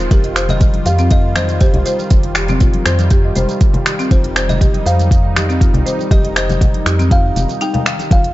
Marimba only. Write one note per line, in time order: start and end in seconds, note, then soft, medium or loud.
0.11 0.23 G4 loud
0.24 0.35 D#5 medium
0.36 0.43 C5 loud
0.86 0.93 G4 medium
0.99 1.05 C4 loud
1.11 1.18 F4 medium
1.36 1.48 C5 loud
1.61 1.73 G4 loud
1.74 1.85 D#5 medium
1.86 1.93 C5 loud
2.36 2.43 G4 medium
2.49 2.56 C4 loud
2.61 2.68 F4 medium
2.86 2.98 C5 loud
3.11 3.23 G4 loud
3.24 3.35 D#5 medium
3.36 3.43 C5 loud
3.86 3.93 G4 medium
3.99 4.05 C4 loud
4.11 4.18 F4 medium
4.36 4.48 C5 loud
4.61 4.73 G4 loud
4.74 4.85 D#5 medium
4.86 4.93 C5 loud
5.36 5.43 G4 medium
5.49 5.55 C4 loud
5.61 5.68 F4 medium
5.86 5.98 C5 loud
6.11 6.23 G4 loud
6.24 6.35 D#5 medium
6.36 6.43 C5 loud
6.86 6.93 G4 medium
6.99 7.06 C4 loud
7.11 7.18 F4 medium
7.36 7.48 F5 medium
7.61 7.68 D#4 loud
7.74 7.84 F5 loud
7.86 7.98 F5 loud
8.11 8.18 F4 medium